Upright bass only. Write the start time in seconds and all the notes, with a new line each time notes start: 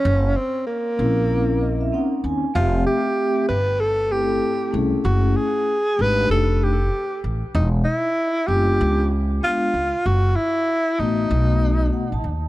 0.05 F#1
0.99 A#1
2.24 D#2
2.55 F1
3.50 G1
4.74 C2
5.05 F#1
5.99 G#1
6.30 F1
7.24 A1
7.55 E1
8.48 F#1
8.81 C#2
9.74 C#2
10.06 F#1
10.99 A1
11.31 B1
12.12 A1
12.24 D#2